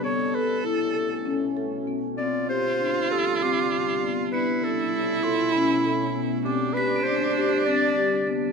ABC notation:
X:1
M:7/8
L:1/16
Q:1/4=98
K:Gmix
V:1 name="Crotales"
z12 z2 | z8 c''6 | ^c''8 z6 | z2 b' d''4- d'' a'6 |]
V:2 name="Clarinet"
^c2 B2 A6 z4 | d2 c4 A2 G4 z2 | B2 A4 F2 E4 z2 | G2 B2 c4 d4 z2 |]
V:3 name="Viola"
A12 z2 | F12- F2 | E12- E2 | D12- D2 |]
V:4 name="Marimba"
B,2 A2 E2 A2 ^C2 A2 B,2 | C2 G2 D2 G2 C2 G2 B,2 | B,2 A2 E2 A2 ^C2 A2 B,2 | C2 G2 D2 G2 C2 G2 B,2 |]
V:5 name="Ambient pad" clef=bass
[B,,A,^C]12- [B,,A,C]2 | [C,G,D]12- [C,G,D]2 | [B,,A,^C]12- [B,,A,C]2 | [C,G,D]12- [C,G,D]2 |]